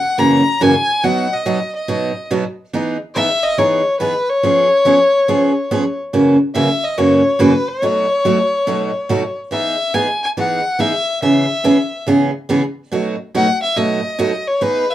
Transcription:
Already playing: F#5
0.18 F#2 C#3 E3 A#3 C#4 F#4 A#5
0.61 F#2 C#3 E3 A#3 C#4 F#4 G#5
1.03 B2 F#3 B3 D#4 F#4 F#5
1.33 D#5
1.46 B2 F#3 B3 D#4 F#4
1.75 D#5
1.88 B2 F#3 B3 D#4 F#4
2.31 B2 F#3 B3 D#4 F#4
2.73 E3 B3 D#4 G#4
3.15 E3 B3 D#4 G#4 E5
3.43 D#5
3.58 E3 B3 D#4 G#4 C#5
4.00 E3 B3 D#4 G#4 B4
4.29 C#5
4.43 F3 B3 C#4 G#4
4.85 F3 B3 C#4 G#4
5.28 F3 B3 C#4 G#4
5.71 F3 B3 C#4 G#4
6.13 F#2 C#3 E3 A#3 C#4 F#4
6.55 F#2 C#3 E3 A#3 C#4 F#4 E5
6.84 D#5
6.98 F#2 C#3 E3 A#3 C#4 F#4 C#5
7.39 F#2 C#3 E3 A#3 C#4 F#4 B4
7.68 C#5
7.82 B2 F#3 A3 D#4 F#4
8.25 B2 F#3 A3 D#4 F#4
8.67 B2 F#3 A3 D#4 F#4
9.09 B2 F#3 A3 D#4 F#4
9.51 E3 B3 D#4 G#4 E5
9.94 E3 B3 D#4 G#4 G#5
10.23 G#5
10.37 E3 B3 D#4 G#4 F#5
10.79 E3 B3 D#4 G#4 E5
11.22 C#3 E3 B3 C#4 G#4 E5
11.64 C#3 E3 B3 C#4 G#4
12.07 C#3 E3 B3 C#4 G#4
12.49 C#3 E3 B3 C#4 G#4
12.92 B2 F#3 A3 D#4 F#4
13.35 B2 F#3 A3 D#4 F#4 F#5
13.62 E5
13.76 B2 F#3 A3 D#4 F#4 D#5
14.19 B2 F#3 A3 D#4 F#4
14.47 C#5
14.61 E3 B3 D#4 G#4 B4
14.91 E5

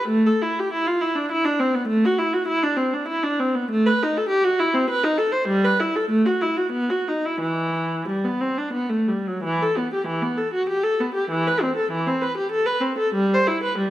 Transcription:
0.08 A3
0.26 A4
0.42 E4
0.59 G4
0.73 E4
0.87 F4
1.01 E4
1.15 D4
1.31 E4
1.45 D4
1.60 C4
1.74 B3
1.88 A3
2.05 F#4
2.18 E4
2.33 F#4
2.48 E4
2.63 D4
2.77 C4
2.93 D4
3.08 E4
3.23 D4
3.40 C4
3.55 B3
3.71 A3
3.86 B4
4.03 D#4
4.18 A4
4.29 G4
4.44 F#4
4.60 E4
4.74 C4
4.90 B4
5.04 D#4
5.18 A4
5.32 C5
5.48 G3
5.65 B4
5.80 E4
5.96 A4
6.10 A3
6.26 F#4
6.41 E4
6.57 F#4
6.72 B3
6.90 F#4
7.08 D#4
7.25 E4
7.41 E3
8.08 G3
8.25 B3
8.41 C4
8.58 D4
8.73 B3
8.89 A3
9.08 G3
9.27 F#3
9.44 E3
9.62 A4
9.77 B3
9.94 G4
10.07 E3
10.22 B3
10.38 A4
10.54 F#4
10.69 G4
10.83 A4
11.00 B3
11.14 G4
11.31 E3
11.48 B4
11.62 C4
11.76 A4
11.92 E3
12.07 C4
12.22 B4
12.37 G4
12.52 A4
12.66 B4
12.81 C4
12.98 A4
13.14 G3
13.34 C5
13.48 E4
13.63 B4
13.78 G3

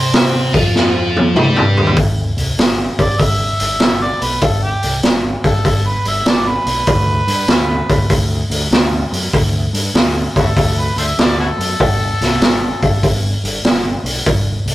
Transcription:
Already playing: C3 C4 C5
0.13 snare, open hi-hat
0.53 F2 F3 F4, kick, open hi-hat
0.75 snare
1.16 high tom
1.35 G2 G3 G4, mid tom
1.56 mid tom
1.77 floor tom
1.87 floor tom
1.96 G1, kick, open hi-hat
2.37 C2, open hi-hat
2.58 G1, snare, open hi-hat
2.99 G1 D5, kick, open hi-hat
3.19 G1 E5, kick, open hi-hat
3.60 G1, open hi-hat
3.80 G1, snare, open hi-hat
4.02 D5
4.22 B1 B4, open hi-hat
4.41 G1 A4, kick, open hi-hat
4.64 G4
4.83 C2, open hi-hat
5.03 G1, snare, open hi-hat
5.44 G1 A4, kick, open hi-hat
5.65 G1, kick, open hi-hat
5.87 B4
6.05 G1 E5, open hi-hat
6.25 G1 A4 B4 D5, snare, open hi-hat
6.48 B4
6.66 B1, open hi-hat
6.87 D2, kick, open hi-hat
7.27 G2, open hi-hat
7.48 D2, snare, open hi-hat
7.89 D2, kick, open hi-hat
8.10 D2, kick, open hi-hat
8.50 D2, open hi-hat
8.71 D2, snare, open hi-hat
9.12 F#2, open hi-hat
9.33 D2, kick, open hi-hat
9.73 G2, open hi-hat
9.94 D2, snare, open hi-hat
10.36 D2 E4 F#4 A4, kick, open hi-hat
10.56 D2, kick, open hi-hat
10.80 B4
10.96 D2 A4 C5 E5, open hi-hat
11.18 D2 D5, snare, open hi-hat
11.40 E4 F#4 A4
11.58 F#2, open hi-hat
11.80 G1, kick, open hi-hat
12.21 C2, snare, open hi-hat
12.41 G1, snare, open hi-hat
12.83 G1, kick, open hi-hat
13.03 G1, kick, open hi-hat
13.43 G1, open hi-hat
13.64 G1, snare, open hi-hat
14.04 B1, open hi-hat
14.26 G1, kick, open hi-hat
14.66 C2, open hi-hat

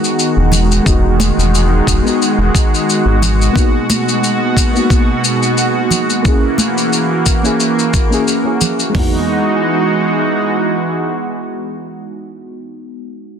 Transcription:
Already playing: D#3 G#3 B3 D#4 F#4
0.04 shaker
0.19 shaker
0.37 E1
0.52 low conga, shaker
0.72 shaker
0.83 E1 G#3 B3, kick, shaker
0.87 D#4 F#4
1.20 high conga, shaker
1.38 E1, shaker
1.55 shaker
1.87 E1, kick, shaker
2.03 G#3 B3 D#4, shaker
2.09 F#4
2.22 shaker
2.38 E1
2.55 kick, shaker
2.74 shaker
2.90 shaker
3.06 G#1
3.22 B2, low conga, shaker
3.42 shaker
3.53 A#3 B3, kick
3.57 D#4 F#4, shaker
3.90 high conga, shaker
4.09 shaker
4.24 shaker
4.57 kick, shaker
4.73 A#3 B3, shaker
4.77 D#4 F#4
4.90 kick, shaker
5.24 shaker
5.43 shaker
5.58 shaker
5.91 low conga, shaker
6.10 shaker
6.22 E3 A#3 C#4 E4, kick, shaker
6.28 G#4
6.58 high conga, shaker
6.78 shaker
6.93 shaker
7.26 kick, shaker
7.43 A#3 C#4 E4 G#4, shaker
7.60 shaker
7.79 shaker
7.94 kick, shaker
8.10 A#3 C#4 E4 G#4, shaker
8.28 shaker
8.44 A#3 C#4 E4 G#4
8.61 low conga, shaker
8.79 shaker
8.90 G#3 B3
8.95 E3 G#3 D#4 F#4, kick, floor tom, open hi-hat
8.99 F#4

